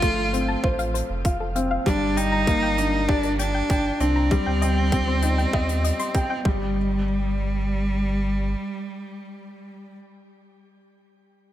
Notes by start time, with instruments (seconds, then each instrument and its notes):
Already playing: sub bass G1, felt piano F3 F5, cello F4
0.02 felt piano A3, synth arpeggio sound F4, kick, closed hi-hat
0.33 felt piano C4, synth arpeggio sound C5, closed hi-hat
0.48 synth arpeggio sound A5
0.64 sub bass A1, synth arpeggio sound F4, felt piano C5, kick
0.79 synth arpeggio sound F5, closed hi-hat
0.94 synth arpeggio sound C5, closed hi-hat
1.10 sub bass F1
1.25 synth arpeggio sound F4, felt piano F5, kick, closed hi-hat
1.40 synth arpeggio sound A4
1.56 felt piano C4, synth arpeggio sound F5, closed hi-hat
1.71 synth arpeggio sound F5
1.86 sub bass G1, felt piano G3, cello D4, synth arpeggio sound G4, kick, closed hi-hat
2.17 cello D#4, synth arpeggio sound D5, felt piano G5, closed hi-hat
2.32 synth arpeggio sound A#5
2.47 felt piano A#3, synth arpeggio sound G4, kick, closed hi-hat
2.63 synth arpeggio sound G5
2.78 felt piano D4, synth arpeggio sound D5, closed hi-hat
3.08 cello D4, synth arpeggio sound G4, felt piano D5, kick
3.23 synth arpeggio sound A#4, closed hi-hat
3.39 cello D4, synth arpeggio sound G5, closed hi-hat
3.55 synth arpeggio sound G5
3.70 sub bass G1, synth arpeggio sound G4, felt piano G5, kick, closed hi-hat
4.00 sub bass C2, cello C4, felt piano D4, synth arpeggio sound D5, closed hi-hat
4.16 synth arpeggio sound A#5
4.31 felt piano G3, synth arpeggio sound G4, kick, closed hi-hat
4.46 sub bass D2, synth arpeggio sound G5
4.62 synth arpeggio sound D#5, felt piano G5, closed hi-hat
4.92 felt piano C4, synth arpeggio sound G4, kick, closed hi-hat
5.08 synth arpeggio sound C5
5.22 felt piano D#4, synth arpeggio sound G5, closed hi-hat
5.38 synth arpeggio sound G5, closed hi-hat
5.53 sub bass D#2, synth arpeggio sound G4, felt piano D#5, kick
5.69 closed hi-hat
5.84 synth arpeggio sound D#5, closed hi-hat
5.99 synth arpeggio sound C6, closed hi-hat
6.15 synth arpeggio sound G4, felt piano G5, kick, closed hi-hat
6.30 synth arpeggio sound G5
6.45 sub bass G1, felt piano G3, cello G3, synth arpeggio sound G4, kick